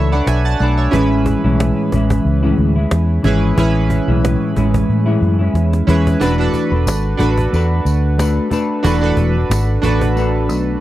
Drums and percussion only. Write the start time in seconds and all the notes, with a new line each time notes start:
0.27 cajon slap
0.93 cajon bass
1.26 cajon bass
1.60 cajon slap
1.92 cajon bass
2.10 cajon bass
2.26 cajon slap
2.58 cajon slap
2.91 cajon slap
3.24 cajon bass
3.58 cajon bass
3.90 cajon bass
4.25 cajon slap
4.56 cajon bass
4.74 cajon bass
4.90 cajon slap
5.22 cajon slap
5.55 cajon slap
5.73 cajon slap
5.89 cajon bass
6.07 cajon bass
6.21 cajon bass, tambourine
6.53 cajon bass, tambourine
6.87 cajon slap, tambourine
7.20 cajon bass, tambourine
7.38 cajon bass
7.53 cajon slap, tambourine
7.86 cajon slap, tambourine
8.19 cajon slap, tambourine
8.51 cajon bass, tambourine
8.85 cajon bass, tambourine
9.17 cajon bass
9.51 cajon slap, tambourine
9.83 cajon bass, tambourine
10.01 cajon bass
10.17 tambourine
10.49 tambourine